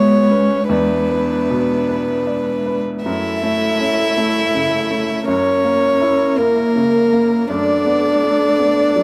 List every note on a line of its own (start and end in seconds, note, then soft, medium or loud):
0.00 0.67 C#2 medium
0.00 0.73 G#2 medium
0.00 0.72 G#3 medium
0.00 3.06 G#3 medium
0.00 0.31 B3 medium
0.00 0.70 F#4 medium
0.00 0.31 B4 medium
0.00 3.02 B4 medium
0.00 0.31 C#5 soft
0.00 0.70 C#5 medium
0.00 0.66 E5 loud
0.00 0.73 G#5 loud
0.30 0.68 C#4 medium
0.30 0.70 B4 medium
0.69 3.01 E2 medium
0.69 2.85 B3 medium
0.69 2.80 D4 medium
0.69 3.05 E4 medium
0.69 2.81 B4 medium
0.69 2.25 D5 medium
1.10 1.73 B4 medium
1.50 2.12 B2 soft
1.89 2.51 B4 soft
2.27 2.67 D5 soft
2.66 3.05 B4 soft
3.05 5.24 F#2 medium
3.05 5.25 A3 medium
3.05 7.46 E4 medium
3.05 5.24 E4 loud
3.05 5.24 A4 medium
3.05 7.46 C#5 medium
3.05 5.24 E5 medium
3.43 4.03 A3 soft
3.80 4.40 C#4 soft
4.17 4.76 A3 soft
4.54 5.13 C#3 soft
4.91 5.28 A3 soft
5.27 7.45 F#2 medium
5.27 7.50 A#3 medium
5.27 6.40 C#4 medium
5.27 7.51 A#4 medium
5.27 6.40 C#5 medium
5.64 6.24 A#3 soft
6.02 6.61 E4 soft
6.38 6.98 A#3 soft
6.38 7.49 A#3 medium
6.38 7.50 A#4 medium
6.76 7.35 C#3 soft
7.13 7.50 A#3 soft
7.48 9.03 F#2 medium
7.48 9.03 A3 medium
7.48 9.03 D4 medium
7.48 9.03 A4 medium
7.48 9.03 B4 soft
7.48 9.03 D5 medium
7.86 8.45 B3 soft
8.23 8.82 D4 soft
8.59 9.03 B3 soft
8.96 9.03 F#3 soft